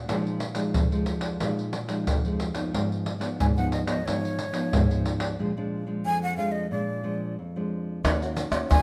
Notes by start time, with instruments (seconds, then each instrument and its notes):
0.08 nylon-string guitar A#2 F3 G#3 D#4, pandeiro, surdo
0.27 pandeiro
0.40 pandeiro
0.55 nylon-string guitar F3 G#3 D#4, pandeiro
0.74 nylon-string guitar F2, pandeiro, surdo
0.92 nylon-string guitar F3 G#3 D#4, pandeiro
1.06 pandeiro
1.21 pandeiro
1.40 nylon-string guitar A#2 F3 G#3 D#4, pandeiro, surdo
1.59 pandeiro
1.73 pandeiro
1.88 nylon-string guitar F3 G#3 D#4, pandeiro
2.07 nylon-string guitar F2, pandeiro, surdo
2.25 nylon-string guitar F3 G#3 D#4, pandeiro
2.40 pandeiro
2.54 nylon-string guitar F3 B3 D#4, pandeiro
2.73 nylon-string guitar G#2, pandeiro, surdo
2.92 pandeiro
3.06 pandeiro
3.19 nylon-string guitar F3 B3 D#4, pandeiro
3.39 nylon-string guitar G#2, flute G#5, pandeiro, surdo
3.56 nylon-string guitar F3 B3 D#4, flute F#5, pandeiro
3.72 flute D#5, pandeiro
3.86 nylon-string guitar F3 B3 D#4, flute D#5, pandeiro
4.05 nylon-string guitar G#2 F3 B3 D#4, flute C#5, pandeiro, surdo
4.25 pandeiro
4.39 pandeiro
4.52 nylon-string guitar F3 B3 D#4, pandeiro
4.72 nylon-string guitar G#2, pandeiro, surdo
4.90 nylon-string guitar F3 B3 D#4, pandeiro
5.06 pandeiro
5.20 pandeiro
5.39 nylon-string guitar A#2 F3 G#3 D4
5.57 nylon-string guitar F3 G#3 D4
5.87 nylon-string guitar F3 G#3 D4
6.05 nylon-string guitar F2, flute G#5
6.23 flute F#5
6.37 nylon-string guitar F3 G#3 D4, flute F5
6.52 flute D#5
6.71 nylon-string guitar A#2 F3 G#3 D4, flute D5
7.03 nylon-string guitar F3 G#3 D4
7.39 nylon-string guitar F2
7.56 nylon-string guitar F3 G#3 D4
8.04 upright bass D#2, nylon-string guitar D#3 A#3 C#4 F#4, pandeiro, tamborim, shaker, surdo
8.22 nylon-string guitar A#3 C#4 F#4, pandeiro, shaker
8.37 pandeiro, shaker
8.51 upright bass D#2, nylon-string guitar A#3 C#4 F#4, pandeiro, tamborim, shaker
8.71 upright bass D#2, nylon-string guitar A#2, flute G#5, pandeiro, tamborim, shaker, surdo